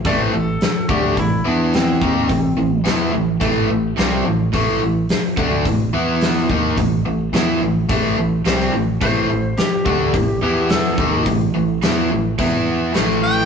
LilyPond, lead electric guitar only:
\new Staff \with { instrumentName = "Lead electric guitar" } { \time 4/4 \key a \minor \tempo 4 = 107 d''16 c''16 a'4 g'8 e'8 d'8 c'4~ | c'4 r2. | r1 | r1 |
c''4 g'4. g'8 a'4 | r1 | }